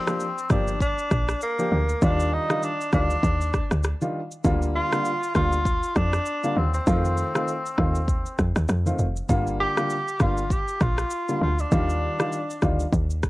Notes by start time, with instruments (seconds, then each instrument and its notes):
Already playing: tenor saxophone C4
0.07 grand piano F3 A#3 D4 G4, cross-stick, shaker
0.20 shaker
0.38 shaker
0.50 log drum bass G1, grand piano F3 A#3 D4 G4, tenor saxophone D4, kick, cross-stick, shaker
0.68 shaker
0.81 tenor saxophone D4, kick, shaker
0.99 shaker
1.11 log drum bass A#1, kick, cross-stick, shaker
1.29 cross-stick, shaker
1.41 tenor saxophone A#3, shaker
1.59 grand piano F3 A#3 D4 G4, shaker
1.72 log drum bass D2
1.89 shaker
2.02 log drum bass D#2, grand piano D#3 G3 D4 F4, tenor saxophone D4, kick, shaker
2.20 shaker
2.33 tenor saxophone D#4
2.50 grand piano D#3 G3 D4 F4, cross-stick, shaker
2.63 tenor saxophone D4, shaker
2.81 shaker
2.93 log drum bass D2, grand piano D#3 G3 D4 F4, tenor saxophone D4, kick, cross-stick, shaker
3.10 shaker
3.23 log drum bass D#2, kick, shaker
3.41 shaker
3.54 kick, cross-stick, shaker
3.71 log drum bass D2, cross-stick, shaker
3.84 cross-stick, shaker
4.01 grand piano D#3 G3 D4 F4, shaker
4.31 shaker
4.44 log drum bass D2, grand piano D3 G3 A#3 F4, kick, shaker
4.62 shaker
4.75 tenor saxophone F4
4.92 grand piano D3 G3 A#3 F4, cross-stick, shaker
5.05 shaker
5.23 shaker
5.35 log drum bass D2, grand piano D3 G3 A#3 F4, tenor saxophone F4, kick, cross-stick, shaker
5.53 shaker
5.66 kick, shaker
5.83 shaker
5.96 log drum bass F2, tenor saxophone D4, kick, cross-stick, shaker
6.13 cross-stick, shaker
6.26 shaker
6.44 grand piano D3 G3 A#3 F4, shaker
6.57 log drum bass D#2, tenor saxophone C4
6.74 tenor saxophone C4, shaker
6.87 log drum bass F2, grand piano D#3 A3 C4 F4, kick, shaker
7.05 shaker
7.17 shaker
7.34 grand piano D#3 A3 C4 F4, cross-stick, shaker
7.48 shaker
7.66 shaker
7.77 log drum bass D#2, grand piano D#3 A3 C4 F4, kick, cross-stick
7.95 shaker
8.08 kick, shaker
8.26 shaker
8.39 log drum bass F2, kick, cross-stick, shaker
8.56 log drum bass D#2, cross-stick, shaker
8.68 log drum bass F2, cross-stick, shaker
8.86 grand piano D#3 A3 C4 F4, shaker
8.99 log drum bass F1, shaker
9.16 shaker
9.29 log drum bass G1, grand piano D3 G3 A#3 F4, kick, shaker
9.47 shaker
9.60 tenor saxophone G4
9.77 grand piano D3 G3 A#3 F4, cross-stick, shaker
9.90 shaker
10.08 shaker
10.20 log drum bass G1, grand piano D3 G3 A#3 F4, tenor saxophone F4, kick, cross-stick, shaker
10.37 shaker
10.50 tenor saxophone G4, kick, shaker
10.68 shaker
10.81 log drum bass A#1, tenor saxophone F4, kick, cross-stick, shaker
10.98 cross-stick, shaker
11.11 shaker
11.29 grand piano D3 G3 A#3 F4, shaker
11.41 log drum bass D2, tenor saxophone F4
11.59 tenor saxophone D4, shaker
11.71 log drum bass D#2, grand piano D#3 G3 D4 F4, kick, shaker
11.89 shaker
12.19 grand piano D#3 G3 D4 F4, cross-stick, shaker
12.32 shaker
12.50 shaker
12.62 log drum bass D2, grand piano D#3 G3 D4 F4, kick, cross-stick, shaker
12.80 shaker
12.93 log drum bass D#2, kick, shaker
13.10 shaker
13.23 kick, cross-stick, shaker